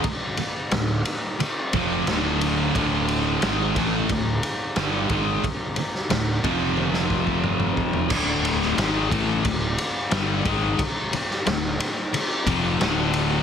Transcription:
0.04 muted fingered electric bass stroke soft
0.04 muted distorted electric guitar stroke medium
0.04 kick loud
0.04 ride loud
0.37 muted distorted electric guitar stroke medium
0.37 muted fingered electric bass stroke soft
0.37 ride medium
0.71 1.04 D1 medium
0.71 0.99 D2 medium
0.71 0.99 A2 medium
0.71 snare loud
0.71 ride medium
1.05 ride medium
1.39 muted distorted electric guitar stroke medium
1.39 muted fingered electric bass stroke soft
1.39 ride loud
1.73 2.05 F1 medium
1.73 2.06 F2 medium
1.73 2.07 C3 medium
1.73 2.07 F3 loud
1.73 kick loud
1.73 ride medium
2.07 2.71 D1 medium
2.07 2.73 D2 medium
2.07 2.74 A2 medium
2.07 2.75 D3 loud
2.07 snare loud
2.07 ride medium
2.41 ride medium
2.74 3.38 D1 loud
2.74 3.41 D2 loud
2.74 3.42 A2 loud
2.74 3.42 D3 loud
2.74 kick loud
2.74 ride loud
3.08 ride medium
3.41 3.74 G#1 medium
3.41 3.74 G#2 medium
3.41 3.75 D#3 loud
3.41 3.75 G#3 loud
3.41 snare loud
3.41 ride medium
3.75 4.07 A1 loud
3.75 4.08 A2 medium
3.75 4.09 E3 medium
3.75 4.09 A3 loud
3.75 kick loud
3.75 ride medium
4.09 4.41 D1 medium
4.09 4.37 D2 medium
4.09 4.37 A2 medium
4.09 kick loud
4.09 ride medium
4.43 ride medium
4.76 5.08 G1 medium
4.76 5.09 G2 medium
4.76 5.09 D3 medium
4.76 5.10 G3 loud
4.76 snare loud
4.76 ride medium
5.09 5.41 G#1 medium
5.09 5.42 G#2 medium
5.09 5.43 D#3 loud
5.09 5.43 G#3 loud
5.09 kick loud
5.09 ride medium
5.43 muted distorted electric guitar stroke medium
5.43 muted fingered electric bass stroke soft
5.43 kick loud
5.43 ride medium
5.76 muted distorted electric guitar stroke medium
5.76 muted fingered electric bass stroke soft
5.76 ride medium
5.95 snare soft
6.10 6.42 D1 medium
6.10 6.37 D2 medium
6.10 6.38 A2 medium
6.10 snare loud
6.10 ride medium
6.43 8.08 F1 medium
6.43 8.11 F2 medium
6.43 8.11 C3 medium
6.43 8.11 F3 medium
6.43 kick loud
6.43 ride medium
6.77 high tom medium
6.94 snare medium
7.10 kick medium
7.27 kick medium
7.44 mid tom medium
7.60 mid tom medium
7.77 kick medium
7.93 floor tom medium
8.10 8.74 D1 loud
8.10 8.77 D2 medium
8.10 8.78 A2 medium
8.10 8.77 D3 loud
8.10 kick loud
8.10 crash loud
8.45 ride medium
8.62 snare soft
8.77 9.09 G#1 medium
8.77 9.09 G#2 loud
8.77 9.10 D#3 loud
8.77 9.10 G#3 loud
8.77 snare loud
8.77 ride loud
9.09 9.43 A1 medium
9.09 9.43 A2 loud
9.09 9.43 E3 loud
9.09 9.44 A3 loud
9.09 kick loud
9.09 ride medium
9.44 9.77 D1 medium
9.44 9.72 D2 medium
9.44 9.72 A2 medium
9.44 kick loud
9.44 ride loud
9.78 ride medium
10.10 10.43 G1 medium
10.10 10.44 G2 medium
10.10 10.45 D3 loud
10.10 10.45 G3 loud
10.10 snare loud
10.10 ride medium
10.45 10.77 G#1 medium
10.45 10.78 G#2 loud
10.45 10.79 D#3 loud
10.45 10.79 G#3 loud
10.45 kick loud
10.45 ride medium
10.79 muted distorted electric guitar stroke medium
10.79 muted fingered electric bass stroke soft
10.79 kick loud
10.79 ride loud
11.13 muted distorted electric guitar stroke medium
11.13 muted fingered electric bass stroke soft
11.13 ride medium
11.31 snare soft
11.46 11.78 D1 medium
11.46 11.73 D2 medium
11.46 11.74 A2 medium
11.46 snare loud
11.46 ride loud
11.80 ride medium
12.14 muted distorted electric guitar stroke medium
12.14 muted fingered electric bass stroke soft
12.14 ride loud
12.46 12.78 F1 medium
12.46 12.80 F2 loud
12.46 12.80 C3 loud
12.46 12.80 F3 loud
12.46 kick loud
12.46 ride medium
12.80 13.43 D1 medium
12.80 13.43 D2 loud
12.80 13.43 A2 loud
12.80 13.43 D3 loud
12.80 snare loud
12.80 ride medium
13.13 ride medium

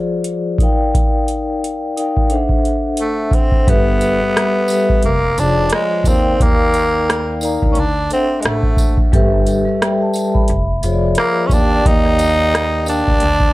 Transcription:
0.00 0.42 F3 medium
0.00 0.42 F4 medium
0.00 0.43 G#4 medium
0.00 0.43 C5 medium
0.00 0.44 D5 medium
0.24 closed hi-hat medium
0.58 1.70 D#4 medium
0.58 1.71 A#4 medium
0.58 1.71 D5 medium
0.58 1.71 F5 medium
0.58 kick medium
0.58 closed hi-hat medium
0.63 1.72 G5 medium
0.95 kick loud
0.95 closed hi-hat medium
1.28 closed hi-hat medium
1.64 closed hi-hat medium
1.97 2.31 D#4 medium
1.97 2.31 A#4 medium
1.97 2.32 D5 medium
1.97 2.32 F5 medium
1.97 2.33 G5 medium
1.97 closed hi-hat medium
2.17 kick medium
2.30 3.40 D4 medium
2.30 3.41 A4 medium
2.30 3.41 C5 medium
2.30 3.42 E5 medium
2.30 3.42 F#5 medium
2.30 closed hi-hat medium
2.49 kick medium
2.65 closed hi-hat soft
2.97 3.36 A3 medium
2.97 closed hi-hat medium
3.31 3.71 C4 medium
3.31 kick medium
3.31 closed hi-hat medium
3.52 kick medium
3.67 4.17 G1 loud
3.67 4.06 G3 medium
3.67 5.05 B3 loud
3.67 4.07 G4 medium
3.67 4.07 A4 medium
3.67 4.08 B4 medium
3.67 4.08 E5 loud
3.67 kick loud
3.67 closed hi-hat loud
4.01 closed hi-hat medium
4.01 tambourine soft
4.20 4.58 G3 medium
4.20 4.59 G4 medium
4.20 4.59 A4 medium
4.20 4.60 B4 medium
4.20 4.60 E5 medium
4.37 cross-stick loud
4.37 closed hi-hat medium
4.68 5.04 G3 medium
4.68 5.04 G4 medium
4.68 5.04 A4 medium
4.68 5.05 B4 medium
4.68 closed hi-hat medium
4.68 tambourine medium
4.73 5.05 E5 medium
4.90 kick medium
5.03 5.35 F1 medium
5.03 5.41 A#3 medium
5.03 closed hi-hat medium
5.38 5.69 F1 medium
5.38 6.06 F3 medium
5.38 5.73 D4 loud
5.38 6.07 F4 medium
5.38 6.07 G#4 medium
5.38 6.07 C5 medium
5.38 5.47 C#5 medium
5.38 closed hi-hat medium
5.38 tambourine soft
5.48 6.05 D5 medium
5.70 cross-stick loud
5.70 closed hi-hat medium
5.74 6.09 G#3 medium
6.04 6.36 D#2 medium
6.04 6.43 C4 medium
6.04 7.15 D#4 medium
6.04 7.16 A#4 medium
6.04 7.16 D5 medium
6.04 7.17 F5 medium
6.04 kick medium
6.04 closed hi-hat medium
6.04 tambourine medium
6.08 7.17 G5 medium
6.40 7.58 D#2 loud
6.40 7.51 A#3 loud
6.40 kick loud
6.40 closed hi-hat medium
6.73 closed hi-hat medium
6.73 tambourine soft
7.10 cross-stick loud
7.10 closed hi-hat medium
7.41 7.76 D#4 medium
7.41 7.77 A#4 medium
7.41 7.77 D5 medium
7.41 7.77 F5 medium
7.41 closed hi-hat medium
7.41 tambourine medium
7.45 7.78 A#5 medium
7.62 7.76 D2 medium
7.62 kick medium
7.72 7.81 C#4 medium
7.72 closed hi-hat medium
7.77 8.08 D2 medium
7.77 8.12 D4 medium
8.10 8.42 C4 medium
8.10 8.89 D4 medium
8.10 8.89 A4 medium
8.10 8.90 C5 medium
8.10 8.90 E5 medium
8.10 8.91 F#5 medium
8.10 closed hi-hat medium
8.10 tambourine soft
8.41 8.49 G#3 medium
8.41 closed hi-hat medium
8.45 8.77 A1 medium
8.45 9.00 A3 medium
8.45 cross-stick loud
8.63 kick medium
8.77 9.09 F#1 medium
8.77 kick medium
8.77 closed hi-hat medium
8.77 tambourine medium
8.97 kick medium
9.12 9.62 G1 loud
9.12 9.52 G3 loud
9.12 9.52 G4 loud
9.12 9.53 A4 loud
9.12 9.53 B4 loud
9.12 9.54 E5 loud
9.12 kick loud
9.12 closed hi-hat medium
9.46 closed hi-hat medium
9.46 tambourine soft
9.65 10.04 G3 medium
9.65 10.04 G4 medium
9.65 10.04 A4 medium
9.65 10.05 B4 medium
9.65 9.82 E5 medium
9.82 10.00 D5 soft
9.82 10.00 G5 medium
9.82 cross-stick loud
9.82 closed hi-hat medium
10.01 10.33 E5 medium
10.01 10.33 A5 medium
10.13 closed hi-hat medium
10.13 tambourine medium
10.34 10.67 E5 medium
10.34 10.67 B5 medium
10.34 kick medium
10.48 10.80 F1 loud
10.48 closed hi-hat medium
10.82 11.14 F1 loud
10.82 11.51 F3 medium
10.82 11.52 F4 medium
10.82 11.52 G#4 medium
10.82 11.53 C5 medium
10.82 10.92 C#5 medium
10.82 closed hi-hat medium
10.82 tambourine soft
10.93 11.50 D5 medium
11.15 cross-stick loud
11.15 closed hi-hat medium
11.19 11.48 A#3 loud
11.47 11.81 D#2 loud
11.47 11.55 C#4 medium
11.47 12.60 G4 medium
11.47 12.61 A#4 medium
11.47 kick loud
11.51 11.88 D4 loud
11.51 12.61 D5 medium
11.51 12.62 F5 medium
11.51 12.62 G5 medium
11.51 closed hi-hat medium
11.51 tambourine medium
11.86 13.03 D#2 loud
11.86 12.88 D#4 loud
11.86 kick loud
11.86 closed hi-hat medium
12.06 cross-stick soft
12.19 closed hi-hat medium
12.19 tambourine soft
12.55 cross-stick loud
12.55 closed hi-hat medium
12.86 13.21 D4 medium
12.86 13.53 D4 loud
12.86 13.22 A#4 medium
12.86 13.22 D5 medium
12.86 13.22 F5 medium
12.86 13.23 G5 medium
12.86 closed hi-hat medium
12.86 tambourine medium
13.08 13.21 D2 medium
13.08 kick medium
13.20 13.53 D2 loud
13.20 closed hi-hat medium
13.40 kick medium

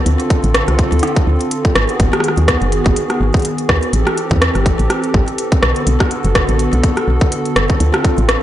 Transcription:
0.00 1.72 D3 medium
0.06 0.17 D2 loud
0.06 1.74 C4 medium
0.06 1.74 F4 medium
0.06 1.74 A4 medium
0.06 closed hi-hat medium
0.20 closed hi-hat soft
0.30 kick loud
0.30 closed hi-hat medium
0.44 0.63 A1 loud
0.44 closed hi-hat soft
0.54 cross-stick loud
0.54 closed hi-hat medium
0.68 0.87 C2 medium
0.68 cross-stick soft
0.68 closed hi-hat soft
0.79 kick loud
0.79 closed hi-hat medium
0.92 1.01 D2 medium
0.92 closed hi-hat soft
0.99 cross-stick medium
0.99 closed hi-hat soft
1.03 closed hi-hat medium
1.07 closed hi-hat soft
1.16 kick loud
1.16 closed hi-hat soft
1.27 1.38 D2 medium
1.41 closed hi-hat soft
1.51 closed hi-hat medium
1.65 kick loud
1.65 closed hi-hat soft
1.75 1.86 G#1 medium
1.75 3.91 D#3 medium
1.75 3.91 B3 medium
1.75 3.91 F#4 medium
1.75 3.91 G#4 medium
1.75 cross-stick loud
1.75 closed hi-hat medium
1.89 closed hi-hat soft
2.00 2.11 G#1 loud
2.00 kick loud
2.00 closed hi-hat medium
2.13 cross-stick medium
2.13 closed hi-hat soft
2.20 cross-stick medium
2.20 closed hi-hat medium
2.28 cross-stick soft
2.37 2.56 D#2 medium
2.37 closed hi-hat soft
2.48 kick loud
2.48 cross-stick loud
2.48 closed hi-hat medium
2.62 2.80 F#1 medium
2.62 closed hi-hat soft
2.72 closed hi-hat medium
2.86 2.94 G#1 medium
2.86 kick loud
2.86 closed hi-hat soft
2.96 closed hi-hat medium
3.10 cross-stick soft
3.10 closed hi-hat soft
3.21 3.31 G#1 medium
3.34 kick loud
3.34 closed hi-hat soft
3.37 closed hi-hat soft
3.40 closed hi-hat soft
3.42 closed hi-hat soft
3.45 closed hi-hat medium
3.58 closed hi-hat soft
3.69 3.80 D#2 medium
3.69 kick loud
3.69 cross-stick loud
3.83 closed hi-hat soft
3.93 4.04 A1 loud
3.93 5.61 E3 medium
3.93 5.61 C4 medium
3.93 5.61 G4 medium
3.93 8.43 A4 medium
3.93 closed hi-hat medium
4.07 cross-stick medium
4.07 closed hi-hat soft
4.17 closed hi-hat medium
4.31 4.50 E2 medium
4.31 kick loud
4.31 closed hi-hat soft
4.42 cross-stick loud
4.42 closed hi-hat medium
4.55 4.74 G1 medium
4.55 cross-stick soft
4.55 closed hi-hat soft
4.66 kick loud
4.66 closed hi-hat medium
4.79 4.88 A1 medium
4.79 closed hi-hat soft
4.90 cross-stick medium
4.90 closed hi-hat medium
5.04 closed hi-hat soft
5.14 5.25 A1 medium
5.14 kick loud
5.28 closed hi-hat soft
5.38 closed hi-hat medium
5.52 kick loud
5.52 closed hi-hat soft
5.63 5.73 B1 medium
5.63 7.78 D3 medium
5.63 7.78 B3 medium
5.63 7.78 F#4 medium
5.63 cross-stick loud
5.63 closed hi-hat medium
5.76 closed hi-hat soft
5.87 5.98 B1 loud
5.87 closed hi-hat medium
6.00 kick loud
6.00 cross-stick medium
6.00 closed hi-hat soft
6.11 closed hi-hat medium
6.24 6.43 F#1 loud
6.24 closed hi-hat soft
6.35 kick loud
6.35 cross-stick loud
6.35 closed hi-hat medium
6.49 6.68 A1 medium
6.49 closed hi-hat soft
6.59 closed hi-hat medium
6.73 6.81 B1 medium
6.73 closed hi-hat soft
6.84 kick medium
6.84 closed hi-hat medium
6.97 cross-stick medium
6.97 closed hi-hat soft
7.08 7.19 B1 medium
7.21 kick loud
7.21 closed hi-hat soft
7.32 closed hi-hat medium
7.45 closed hi-hat soft
7.56 7.67 F#1 medium
7.56 cross-stick loud
7.56 closed hi-hat medium
7.70 kick medium
7.70 closed hi-hat soft
7.80 7.91 D2 loud
7.80 8.43 D3 medium
7.80 8.43 C4 medium
7.80 8.43 F4 medium
7.80 closed hi-hat medium
7.94 cross-stick medium
7.94 closed hi-hat soft
8.04 kick loud
8.04 closed hi-hat medium
8.18 8.37 A1 loud
8.18 closed hi-hat soft
8.29 cross-stick loud
8.29 closed hi-hat medium

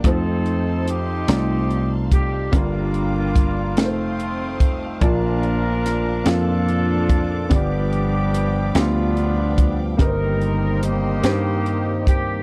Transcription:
0.04 1.25 F2 medium
0.04 0.99 A3 medium
0.04 0.87 C4 medium
0.04 0.87 D#4 medium
0.04 1.00 D#4 medium
0.04 1.00 F4 medium
0.04 0.84 A4 medium
0.04 1.00 C5 medium
0.04 9.97 F5 medium
0.04 2.52 A5 medium
0.04 2.52 C6 medium
0.04 kick medium
0.04 closed hi-hat medium
0.46 closed hi-hat soft
0.88 1.96 C4 medium
0.88 1.96 D#4 medium
0.88 1.96 G4 medium
0.88 closed hi-hat medium
1.27 2.49 C2 medium
1.27 2.23 A3 soft
1.27 2.23 D#4 medium
1.27 2.24 F4 soft
1.27 2.24 D5 medium
1.27 snare loud
1.27 closed hi-hat medium
1.71 closed hi-hat soft
2.12 2.51 G4 medium
2.12 kick medium
2.12 closed hi-hat medium
2.52 3.77 G1 medium
2.52 3.74 G2 medium
2.52 3.48 G3 medium
2.52 3.74 A#3 medium
2.52 3.48 D4 medium
2.52 3.74 D4 medium
2.52 3.48 F4 medium
2.52 3.79 F4 medium
2.52 3.49 A#4 medium
2.52 3.76 G5 medium
2.52 3.76 A#5 medium
2.52 3.76 D6 medium
2.52 kick medium
2.52 closed hi-hat medium
2.94 closed hi-hat soft
3.36 kick medium
3.36 closed hi-hat medium
3.76 4.98 F1 medium
3.76 4.72 A3 medium
3.76 4.99 A3 medium
3.76 4.99 C4 medium
3.76 4.72 D#4 soft
3.76 4.73 F4 soft
3.76 4.72 F4 medium
3.76 3.85 A#4 soft
3.76 7.47 A5 medium
3.76 5.01 C6 medium
3.76 5.00 D#6 medium
3.76 snare medium
3.76 closed hi-hat medium
3.85 4.76 C5 medium
4.20 closed hi-hat soft
4.60 kick medium
4.60 closed hi-hat soft
5.00 6.22 A#1 medium
5.00 6.22 A#2 soft
5.00 7.47 F3 soft
5.00 5.96 A#3 medium
5.00 7.47 A#3 soft
5.00 7.47 D4 soft
5.00 6.23 D4 medium
5.00 5.97 F4 medium
5.00 6.23 F4 medium
5.00 5.09 G4 soft
5.00 6.23 A#4 medium
5.00 5.97 D5 medium
5.00 5.97 A5 medium
5.00 9.96 D6 medium
5.00 kick medium
5.00 closed hi-hat medium
5.09 7.50 F4 soft
5.43 closed hi-hat soft
5.86 snare soft
5.86 closed hi-hat medium
6.24 7.47 F2 medium
6.24 7.20 A#3 medium
6.24 7.21 F4 soft
6.24 7.48 F4 medium
6.24 7.21 A4 soft
6.24 7.52 A4 medium
6.24 7.22 F5 medium
6.24 snare medium
6.24 closed hi-hat medium
6.28 7.48 D4 medium
6.69 closed hi-hat soft
7.09 kick medium
7.09 closed hi-hat medium
7.49 8.71 G1 medium
7.49 8.71 G2 medium
7.49 9.95 F3 soft
7.49 8.45 B3 medium
7.49 9.96 B3 soft
7.49 8.72 B3 medium
7.49 9.96 D4 soft
7.49 8.45 F4 medium
7.49 7.57 F#4 soft
7.49 8.46 G4 medium
7.49 8.46 D5 medium
7.49 12.43 G5 medium
7.49 9.97 B5 medium
7.49 kick medium
7.49 closed hi-hat medium
7.53 8.73 D4 medium
7.53 8.77 G4 medium
7.53 9.98 G4 medium
7.93 closed hi-hat soft
8.34 closed hi-hat medium
8.75 9.96 D2 medium
8.75 9.70 B3 medium
8.75 9.84 B3 medium
8.75 9.84 D4 medium
8.75 9.70 F4 soft
8.75 9.65 F4 medium
8.75 9.71 G4 soft
8.75 9.71 F5 medium
8.75 snare medium
8.75 closed hi-hat medium
9.17 closed hi-hat soft
9.58 kick medium
9.58 closed hi-hat medium
9.97 11.20 G1 medium
9.97 11.20 G2 medium
9.97 12.43 D#3 soft
9.97 10.93 A#3 medium
9.97 12.43 A#3 soft
9.97 12.43 C4 soft
9.97 10.94 D#4 medium
9.97 10.82 D#4 medium
9.97 10.94 G4 medium
9.97 12.43 G4 medium
9.97 10.79 A#4 medium
9.97 10.06 B4 medium
9.97 12.43 D#5 medium
9.97 12.43 A#5 medium
9.97 12.43 C6 medium
9.97 kick medium
9.97 closed hi-hat medium
10.07 10.98 C5 medium
10.41 closed hi-hat soft
10.82 12.03 A#3 medium
10.82 12.03 D#4 medium
10.82 12.03 G4 medium
10.82 closed hi-hat medium
11.22 12.43 G2 medium
11.22 12.18 A#3 medium
11.22 12.18 D#4 soft
11.22 12.19 G4 medium
11.22 12.19 C5 medium
11.22 snare medium
11.22 closed hi-hat medium
11.66 closed hi-hat soft
12.07 12.43 G4 medium
12.07 kick medium
12.07 closed hi-hat medium

